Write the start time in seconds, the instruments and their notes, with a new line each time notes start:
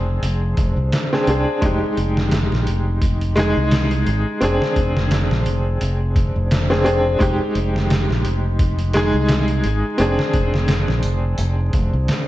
Already playing: fingered electric bass F1, upright piano C4 D4 G#4
0.22 fingered electric bass F1, closed hi-hat
0.57 fingered electric bass F1, kick, closed hi-hat
0.77 fingered electric bass C2
0.92 snare, closed hi-hat
1.13 upright piano C4 D4 G#4, snare
1.27 fingered electric bass C2, upright piano C4 D4 G#4, closed hi-hat
1.61 fingered electric bass F1, upright piano G#3 D#4 G4, kick, closed hi-hat
1.97 fingered electric bass F1, closed hi-hat
2.17 snare
2.31 snare, closed hi-hat
2.52 fingered electric bass A#1, snare
2.67 fingered electric bass F1, closed hi-hat
3.02 kick, closed hi-hat
3.21 closed hi-hat
3.36 upright piano G#3 D#4 G#4, snare, closed hi-hat
3.57 fingered electric bass C2
3.71 snare, closed hi-hat
3.91 closed hi-hat
4.07 fingered electric bass G#1, closed hi-hat
4.41 fingered electric bass F1, upright piano C4 D4 G#4, closed hi-hat
4.62 snare
4.76 fingered electric bass F1, kick, closed hi-hat
4.97 snare
5.11 snare, closed hi-hat
5.31 fingered electric bass A#1, snare
5.46 fingered electric bass F1, closed hi-hat
5.81 fingered electric bass F1, closed hi-hat
6.16 kick, closed hi-hat
6.36 fingered electric bass F1
6.51 snare, closed hi-hat
6.70 upright piano C4 D4 G#4, snare
6.84 upright piano C4 D4 G#4, closed hi-hat
7.19 fingered electric bass F1, upright piano G#3 D#4 G4, kick, closed hi-hat
7.55 fingered electric bass F1, closed hi-hat
7.76 snare
7.90 snare, closed hi-hat
8.09 fingered electric bass A#1, snare
8.25 fingered electric bass F1, closed hi-hat
8.59 kick, closed hi-hat
8.79 closed hi-hat
8.93 upright piano G#3 D#4 G#4, snare, closed hi-hat
9.14 fingered electric bass C2
9.29 snare, closed hi-hat
9.48 closed hi-hat
9.64 fingered electric bass G#1, closed hi-hat
9.98 fingered electric bass F1, upright piano C4 D4 G#4, closed hi-hat
10.19 snare
10.34 fingered electric bass F1, kick, closed hi-hat
10.54 snare
10.68 snare, closed hi-hat
10.88 fingered electric bass A#1, snare
11.03 fingered electric bass F1, closed hi-hat
11.38 fingered electric bass F1, closed hi-hat
11.73 fingered electric bass F1, kick, closed hi-hat
11.93 fingered electric bass C2
12.08 snare, closed hi-hat